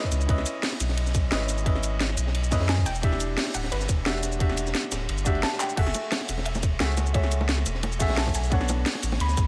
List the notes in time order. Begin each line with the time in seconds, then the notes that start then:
Already playing: B3 C#4 D4 E4 A4 B4 C#5 D5 D#5
0.04 kick, snare
0.12 C#2, snare, closed hi-hat, ride, shaker
0.21 shaker
0.27 C#2 C#4 E4 B4 D#5, kick, closed hi-hat, ride
0.38 snare
0.46 closed hi-hat, ride, shaker
0.62 snare, closed hi-hat, open hi-hat
0.72 snare
0.80 B1, snare, closed hi-hat, ride, shaker
0.89 snare
0.97 closed hi-hat, ride
1.07 snare, shaker
1.15 kick, snare, closed hi-hat, ride, shaker
1.31 G#1 C#4 E4 B4 D#5, snare, closed hi-hat, ride
1.49 snare, closed hi-hat, ride, shaker
1.58 shaker
1.64 C#4 E4 B4 D#5, kick, closed hi-hat, ride
1.75 snare
1.83 closed hi-hat, ride, shaker
2.00 snare, closed hi-hat, ride
2.09 snare
2.17 B1, closed hi-hat, ride, shaker
2.27 snare
2.35 closed hi-hat, ride
2.44 shaker
2.51 F#2 C#4 E4 B4 D#5, kick, snare, closed hi-hat, open hi-hat, shaker
2.60 snare, open hi-hat
2.69 G#5, snare, closed hi-hat, ride
2.77 kick, snare
2.86 E1 G5, snare, closed hi-hat, ride, shaker
2.95 shaker
3.02 D4 E4 G4 E5, kick, closed hi-hat, ride
3.12 snare
3.20 closed hi-hat, ride, shaker
3.37 snare, closed hi-hat, open hi-hat
3.47 snare
3.54 D1 F#5, closed hi-hat, ride, shaker
3.64 snare
3.72 G1 B4, closed hi-hat, ride
3.81 snare, shaker
3.89 E1, kick, snare, closed hi-hat, ride, shaker
4.05 D4 F#4 G4 E5, snare, closed hi-hat, ride
4.23 snare, closed hi-hat, ride, shaker
4.32 shaker
4.39 D4 F#4 G4 E5, kick, closed hi-hat, ride
4.49 snare
4.57 closed hi-hat, ride, shaker
4.67 snare, shaker
4.75 snare, closed hi-hat, ride
4.84 snare
4.92 D1, snare, closed hi-hat, ride, shaker
5.09 G1, closed hi-hat, ride
5.18 shaker
5.25 D4 F#4 G4 E5, kick, closed hi-hat, ride, shaker
5.35 ride
5.43 A5, snare, closed hi-hat, ride
5.53 snare
5.59 G5, snare, clap, closed hi-hat, ride, shaker
5.69 shaker
5.76 F#1 A3 F#4 G#4 E5 F#5, kick, closed hi-hat, crash, ride
5.86 snare
5.94 closed hi-hat, ride, high bongo, shaker
6.12 snare, closed hi-hat, open hi-hat, high bongo
6.21 snare
6.29 E1, snare, closed hi-hat, ride, shaker
6.37 snare, high bongo
6.45 E5, closed hi-hat, ride
6.55 snare, high bongo, shaker
6.63 kick, snare, closed hi-hat, ride, shaker
6.79 C#2 A3 F#4 G#4 E5, snare, closed hi-hat, ride, high bongo
6.97 snare, closed hi-hat, ride, high bongo, shaker
7.07 shaker
7.13 A3 F#4 G#4 C#5 E5, kick, closed hi-hat, ride
7.23 snare, high bongo
7.31 closed hi-hat, ride, shaker
7.41 high bongo
7.49 snare, closed hi-hat, ride
7.58 snare
7.66 E1, closed hi-hat, ride, high bongo, shaker
7.75 snare
7.83 closed hi-hat, ride, high bongo
7.92 shaker
7.99 B1 A3 F#4 G#4 E5, kick, snare, closed hi-hat, open hi-hat, shaker
8.09 snare, open hi-hat, high bongo
8.17 A5, snare, closed hi-hat, ride
8.26 kick, snare, high bongo
8.35 B1 G#5, snare, closed hi-hat, ride, shaker
8.44 shaker
8.50 B3 D4 A4 C#5 F#5, kick, closed hi-hat, ride, high bongo
8.61 snare
8.69 closed hi-hat, ride, high bongo, shaker
8.86 snare, closed hi-hat, open hi-hat
8.95 snare, high bongo
9.02 A1, snare, closed hi-hat, ride, shaker
9.12 snare, high bongo
9.20 D2 B5, closed hi-hat, ride
9.29 snare, shaker
9.37 B1, kick, snare, closed hi-hat, ride, high bongo, shaker